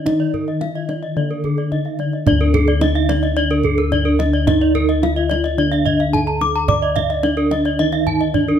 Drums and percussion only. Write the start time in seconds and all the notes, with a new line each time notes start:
0.06 kendang high, kendang low
0.20 kendang slap
0.34 kendang low
0.48 kendang slap
0.61 kendang high
0.75 kendang slap
0.89 kendang high
1.03 kendang slap
1.31 kendang slap
1.44 kendang low
1.58 kendang slap
1.72 kendang low
1.85 kendang slap
1.99 kendang high
2.13 kendang slap
2.27 kendang low
2.41 kendang slap
2.54 kendang high, kendang low
2.68 kendang slap
2.81 kendang high
2.95 kendang slap
3.09 kendang high
3.23 kendang slap
3.51 kendang slap
3.64 kendang low
3.78 kendang slap
3.92 kendang low
4.20 kendang high
4.47 kendang high, kendang low
4.61 kendang slap
4.75 kendang low
4.89 kendang slap
5.03 kendang high
5.18 kendang slap
5.31 kendang high
5.46 kendang slap
5.73 kendang slap
5.86 kendang low
6.00 kendang slap
6.14 kendang low
6.41 kendang high
6.68 kendang low
6.82 kendang slap
6.96 kendang high, kendang low
7.10 kendang slap
7.23 kendang high
7.37 kendang slap
7.51 kendang high
7.65 kendang slap
7.92 kendang slap
8.07 kendang low
8.21 kendang slap
8.34 kendang low